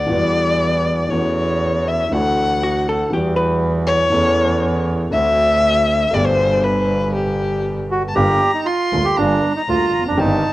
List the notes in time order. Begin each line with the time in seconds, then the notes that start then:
Already playing: D5
0.06 E2 E3 G3 B3 F#4
1.10 E2 E3 A3 C#4 F#4 C#5
1.88 E5
2.10 D2 D3 E3 A3 D4 F#5
2.14 F#4
2.63 F#4
2.89 A4
3.10 E2 E3 G3 B3 G4
3.14 F#4
3.36 B4
3.86 C#5
4.10 E2 E3 A3 C#4
4.14 A4
5.11 D2 D3 A3 C4 E5
5.15 F#4
6.11 G1 G2 B2 D3 G3 D5
6.15 G4
6.26 C5
6.63 B4
7.14 G4
7.91 F#4
8.08 A5
8.15 G1 G2 D3 G3 A#3 F4 G4 A#5
8.54 D#4
8.65 F4 C6
8.93 D2 D3 G3 A#3 F4
9.04 G4
9.17 G1 G2 D3 G3 A#3 D4 F4 A#5
9.56 D#4
9.68 D2 D3 G3 A#3 F4
9.94 F1
10.00 E2
10.05 F2 D4
10.12 F#2
10.17 G1 G2 D#3 G3 C4 D#4 G4 A5